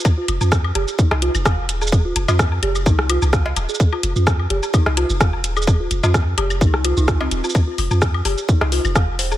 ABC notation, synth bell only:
X:1
M:4/4
L:1/16
Q:"Swing 16ths" 1/4=128
K:Fm
V:1 name="Synth bell"
z F z F z2 G z E z F z f z2 A | z F z F z2 G z E z F z f z2 A | z F z F z2 G z E z F z f z2 A | z F z F z2 G z E z F E z C z F |
z F z F z2 G z E z F z f z c A |]